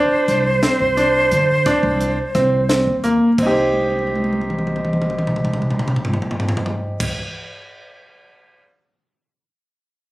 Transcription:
0.00 0.42 D4 medium
0.00 2.69 C5 medium
0.28 0.59 C2 medium
0.28 closed hi-hat medium
0.63 0.87 C4 medium
0.63 snare loud
0.63 closed hi-hat medium
0.80 1.28 C2 medium
0.97 1.46 D4 medium
0.97 closed hi-hat medium
1.31 1.63 D3 medium
1.31 closed hi-hat medium
1.66 2.15 D4 medium
1.66 kick loud
1.66 snare soft
1.66 closed hi-hat medium
1.83 2.14 C2 medium
2.01 closed hi-hat medium
2.35 2.83 C2 medium
2.35 2.59 C4 medium
2.35 kick medium
2.35 snare soft
2.35 closed hi-hat soft
2.69 2.94 C4 medium
2.69 snare loud
2.69 closed hi-hat medium
2.87 3.18 D#2 medium
3.04 3.28 A#3 medium
3.04 closed hi-hat medium
3.38 7.10 C2 medium
3.38 7.10 C4 medium
3.38 kick loud
3.38 crash medium
3.42 7.12 D#4 medium
3.42 7.14 G4 medium
3.51 7.16 C5 medium
3.73 high tom soft
3.81 high tom soft
3.90 high tom soft
3.99 high tom soft
4.07 high tom soft
4.16 high tom soft
4.24 high tom medium
4.33 high tom medium
4.41 high tom medium
4.50 mid tom medium
4.59 mid tom medium
4.67 mid tom medium
4.76 mid tom medium
4.85 mid tom medium
4.93 mid tom medium
5.02 mid tom medium
5.10 mid tom medium
5.19 mid tom medium
5.27 mid tom medium
5.36 mid tom medium
5.45 mid tom medium
5.54 mid tom medium
5.62 mid tom medium
5.70 mid tom medium
5.79 mid tom medium
5.88 mid tom medium
5.96 mid tom medium
6.05 floor tom medium
6.14 floor tom medium
6.22 floor tom medium
6.31 floor tom medium
6.40 floor tom medium
6.49 floor tom medium
6.57 floor tom medium
6.66 floor tom medium
7.00 kick medium
7.00 crash medium

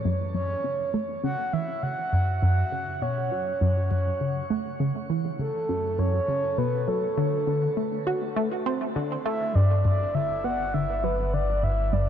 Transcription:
0.05 0.33 F#2 medium
0.34 0.55 F#2 medium
0.34 0.90 C#5 loud
0.64 0.85 C#3 medium
0.94 1.15 A3 loud
1.23 1.36 C#3 medium
1.23 1.55 F#5 loud
1.53 1.74 E3 medium
1.53 1.84 E5 loud
1.83 1.95 C#3 medium
1.83 2.42 F#5 loud
2.13 2.41 F#2 medium
2.42 2.63 F#2 loud
2.42 3.04 F#5 loud
2.72 3.00 C#3 medium
3.02 3.30 B2 medium
3.02 3.61 C#5 medium
3.32 3.52 F#3 medium
3.61 3.89 F#2 loud
3.61 4.46 C#5 medium
3.91 4.12 F#2 medium
4.21 4.42 C#3 medium
4.50 4.71 A3 medium
4.80 4.93 C#3 medium
5.10 5.31 E3 medium
5.39 5.52 C#3 medium
5.39 6.00 A4 medium
5.69 5.97 F#2 medium
5.99 6.20 F#2 loud
5.99 6.60 C#5 loud
6.28 6.57 C#3 medium
6.58 6.86 B2 medium
6.58 6.89 B4 medium
6.88 7.09 F#3 medium
6.88 8.07 A4 medium
7.17 7.46 D3 loud
7.47 7.68 D3 medium
7.77 7.98 A3 medium
8.07 8.28 F#4 loud
8.36 8.49 A3 loud
8.66 8.87 C4 loud
8.96 9.17 D3 medium
9.26 9.54 A3 loud
9.26 9.57 E5 loud
9.55 12.09 G1 medium
9.55 9.83 G2 loud
9.55 9.84 D5 medium
9.85 10.06 G2 medium
9.85 10.16 D5 medium
10.15 10.36 D3 medium
10.15 10.46 E5 loud
10.44 10.65 B3 loud
10.44 10.75 F#5 loud
10.74 10.87 D3 loud
10.74 11.05 E5 loud
11.04 11.25 F#3 loud
11.04 11.35 B4 medium
11.33 11.46 D3 medium
11.33 11.65 D5 loud
11.63 11.91 G2 medium
11.63 11.94 E5 loud
11.93 12.09 G2 loud
11.93 12.09 D5 medium

